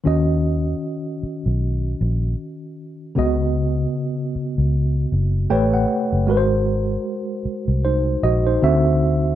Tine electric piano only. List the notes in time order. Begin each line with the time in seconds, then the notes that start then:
0.04 D#3 C#4 F#4 D#5
3.15 C#3 B3 F#4 D#5
5.50 A3 G4 B4 C#5 G5
5.74 F#5
6.27 G#3 F#4 A#4 B4
6.37 C5
7.85 D#4 C5
8.23 F#4 D#5
8.47 D#4 C5
8.62 D3 C4 F#4 E5